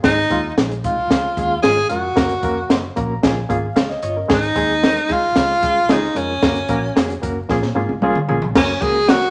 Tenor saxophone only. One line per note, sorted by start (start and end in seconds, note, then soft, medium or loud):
0.04 0.54 D#4 loud
0.86 1.60 F4 medium
1.62 1.88 G#4 loud
1.90 2.92 F#4 medium
4.34 5.14 D#4 loud
5.13 5.94 F4 loud
5.92 6.19 D#4 medium
6.17 7.23 C#4 medium
8.57 8.83 C#4 medium
8.82 9.11 G#4 loud
9.09 9.30 F#4 loud